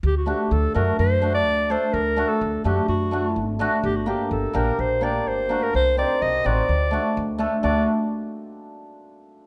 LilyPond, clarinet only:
\new Staff \with { instrumentName = "Clarinet" } { \time 4/4 \tempo 4 = 126 g'16 fis'16 g'8 a'8 bes'8 c''8. d''8. c''8 | bes'8. a'8. g'8 fis'4. r8 | g'16 fis'16 g'8 a'8 bes'8 c''8 d''8 c''8. bes'16 | c''8 d''8 ees''8 d''2 r8 |
d''8 r2. r8 | }